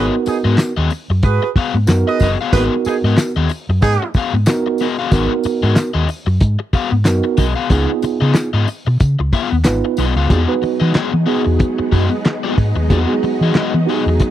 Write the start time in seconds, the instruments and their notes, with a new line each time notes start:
Already playing: overdriven electric guitar B3 F#4 G#4 D#5, tine electric piano B3 D#4 F#4 G#4 A#4 C#5
0.26 horn section B3 D#4 G#4, muted overdriven electric guitar stroke, muted fingered electric bass stroke, open hi-hat, tambourine
0.44 fingered electric bass G#2, overdriven electric guitar B3 F#4 G#4 D#5
0.58 muted overdriven electric guitar stroke, snare, clap, closed hi-hat, tambourine
0.77 fingered electric bass D#2, overdriven electric guitar B3 F#4 G#4 D#5
0.90 muted overdriven electric guitar stroke, open hi-hat, tambourine
1.10 fingered electric bass F#2, muted overdriven electric guitar stroke
1.23 fingered electric bass G#2, horn section F#4 G#4 B4, kick, closed hi-hat
1.43 muted overdriven electric guitar stroke
1.56 overdriven electric guitar B3 F#4 G#4 F5, muted fingered electric bass stroke, kick, open hi-hat
1.74 fingered electric bass G#2, muted overdriven electric guitar stroke
1.87 fingered electric bass F#2, tine electric piano B3 D#4 F#4 A#4, muted overdriven electric guitar stroke, snare, clap, closed hi-hat, tambourine
2.07 horn section G#4 B4 D#5, muted overdriven electric guitar stroke
2.20 fingered electric bass F#1, overdriven electric guitar B3 F#4 G#4, kick, open hi-hat, tambourine
2.24 overdriven electric guitar D#5
2.41 overdriven electric guitar B3 F#4 G#4 F5
2.52 fingered electric bass G#1, tine electric piano A#3 D#4 F#4 A#4, overdriven electric guitar B3 F#4 G#4 D#5, horn section F#4 G#4 B4, kick, closed hi-hat, tambourine
2.59 tine electric piano B3
2.85 horn section B3 D#4 G#4, muted fingered electric bass stroke, muted overdriven electric guitar stroke, open hi-hat, tambourine
3.04 fingered electric bass G#2, overdriven electric guitar B3 F#4 G#4 D#5
3.17 muted overdriven electric guitar stroke, snare, clap, closed hi-hat, tambourine
3.36 fingered electric bass D#2, overdriven electric guitar B3 F#4 G#4 D#5
3.49 muted overdriven electric guitar stroke, open hi-hat, tambourine
3.69 fingered electric bass F#2, muted overdriven electric guitar stroke
3.81 fingered electric bass G#2, horn section B3 D#4 G#4, kick, closed hi-hat, tambourine
4.02 muted overdriven electric guitar stroke
4.14 overdriven electric guitar B3 F#4 G#4 F5, muted fingered electric bass stroke, kick, open hi-hat, tambourine
4.34 fingered electric bass G#2, muted overdriven electric guitar stroke
4.46 tine electric piano B3 D#4 F#4 A#4, muted overdriven electric guitar stroke, snare, clap, closed hi-hat, tambourine
4.66 muted overdriven electric guitar stroke
4.78 overdriven electric guitar B3 F#4, open hi-hat, tambourine
4.82 overdriven electric guitar G#4 D#5
4.99 overdriven electric guitar B3 F#4 G#4 F5
5.12 fingered electric bass G#1, tine electric piano B3 D#4 F#4 A#4, overdriven electric guitar B3 F#4 G#4 D#5, kick, closed hi-hat, tambourine
5.44 muted fingered electric bass stroke, muted overdriven electric guitar stroke, open hi-hat, tambourine
5.63 fingered electric bass G#2, overdriven electric guitar B3 F#4 G#4 D#5
5.76 muted overdriven electric guitar stroke, snare, clap, closed hi-hat, tambourine
5.94 fingered electric bass D#2, overdriven electric guitar B3 F#4 G#4 D#5
6.08 muted overdriven electric guitar stroke, open hi-hat, tambourine
6.26 fingered electric bass F#2, muted overdriven electric guitar stroke
6.40 fingered electric bass G#2, kick, closed hi-hat
6.59 muted overdriven electric guitar stroke
6.73 overdriven electric guitar B3 F#4 G#4 F5, muted fingered electric bass stroke, kick, open hi-hat
6.92 fingered electric bass G#2, muted overdriven electric guitar stroke
7.05 fingered electric bass F#2, tine electric piano B3 D#4 F#4 A#4, muted overdriven electric guitar stroke, snare, clap, closed hi-hat, tambourine
7.24 muted overdriven electric guitar stroke
7.37 fingered electric bass B1, overdriven electric guitar B3 F#4 G#4 D#5, kick, open hi-hat, tambourine
7.55 overdriven electric guitar B3 F#4 G#4 F5
7.70 fingered electric bass C#2, overdriven electric guitar B3 F4 G#4 D#5, tine electric piano B3 D#4 F4 G#4, kick, closed hi-hat, tambourine
8.02 muted overdriven electric guitar stroke, muted fingered electric bass stroke, open hi-hat, tambourine
8.21 fingered electric bass C#3, overdriven electric guitar B3 F4 G#4 D#5
8.35 muted overdriven electric guitar stroke, snare, clap, closed hi-hat, tambourine
8.53 fingered electric bass G#2, overdriven electric guitar B3 F4 G#4 D#5
8.68 muted overdriven electric guitar stroke, open hi-hat, tambourine
8.87 fingered electric bass B2, muted overdriven electric guitar stroke
9.00 fingered electric bass C#3, kick, closed hi-hat, tambourine
9.19 fingered electric bass C#2, muted overdriven electric guitar stroke
9.33 overdriven electric guitar B3 F4 G#4 F5, kick, open hi-hat
9.51 fingered electric bass D#2, muted overdriven electric guitar stroke
9.64 fingered electric bass G#1, tine electric piano B3 D#4 F4 B4, muted overdriven electric guitar stroke, snare, clap, closed hi-hat, tambourine
9.85 muted overdriven electric guitar stroke
9.97 fingered electric bass B1, overdriven electric guitar B3 F4 G#4 D#5, open hi-hat, tambourine
10.16 fingered electric bass C#2, overdriven electric guitar B3 F4 G#4 F5
10.29 string machine F#3 G#3 B3 D#4, tine electric piano B3 D#4 F#4 G#4, overdriven electric guitar B3 F#4 G#4 D#5, kick, closed hi-hat
10.47 tine electric piano B3 D#4 F#4 B4
10.62 muted overdriven electric guitar stroke, muted fingered electric bass stroke, open hi-hat
10.80 fingered electric bass E3, overdriven electric guitar B3 F#4 G#4 D#5
10.94 overdriven electric guitar B3 F#4 G#4 D#5, muted fingered electric bass stroke, snare, clap, closed hi-hat
11.13 fingered electric bass E3, muted overdriven electric guitar stroke
11.26 overdriven electric guitar B3 F#4 G#4 D#5, tine electric piano B3 D#4 F#4 G#4, open hi-hat
11.44 fingered electric bass E2, muted overdriven electric guitar stroke
11.60 muted overdriven electric guitar stroke, kick, closed hi-hat
11.79 muted overdriven electric guitar stroke, muted fingered electric bass stroke
11.92 fingered electric bass F#2, overdriven electric guitar B3 F#4 G#4 D#5, kick, open hi-hat
12.11 muted overdriven electric guitar stroke
12.25 muted overdriven electric guitar stroke, snare, clap, closed hi-hat
12.43 overdriven electric guitar B3 F#4 G#4 D#5
12.57 fingered electric bass G#2, muted overdriven electric guitar stroke, kick, open hi-hat
12.76 fingered electric bass D#2, muted overdriven electric guitar stroke
12.89 fingered electric bass E2, tine electric piano B3 D#4 F#4 G#4, overdriven electric guitar B3 F#4 G#4 D#5, kick, closed hi-hat
13.07 tine electric piano B3 D#4 F#4 G#4
13.23 muted overdriven electric guitar stroke, muted fingered electric bass stroke, open hi-hat
13.41 fingered electric bass E3, overdriven electric guitar B3 F#4 G#4 D#5
13.55 overdriven electric guitar B3 F#4 G#4 D#5, muted fingered electric bass stroke, snare, clap, closed hi-hat
13.74 fingered electric bass E3, muted overdriven electric guitar stroke
13.86 tine electric piano B3 D#4 F#4 G4, overdriven electric guitar B3, open hi-hat
13.90 overdriven electric guitar F#4 G#4 D#5
13.94 tine electric piano G#4
14.06 fingered electric bass E2, muted overdriven electric guitar stroke
14.20 muted overdriven electric guitar stroke, kick, closed hi-hat